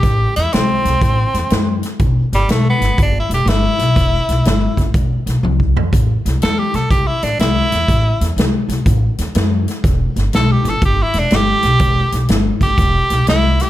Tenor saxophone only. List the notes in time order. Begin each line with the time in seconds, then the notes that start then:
Already playing: G4
0.36 E4
0.53 C4
2.35 G3
2.51 A3
2.70 B3
3.02 D4
3.20 E4
3.34 G4
3.49 E4
6.43 A4
6.59 G4
6.75 A4
6.91 G4
7.07 E4
7.24 D4
7.40 E4
10.35 A4
10.52 G4
10.69 A4
10.85 G4
11.03 E4
11.19 D4
11.36 G4
12.63 G4
13.29 E4
13.62 G4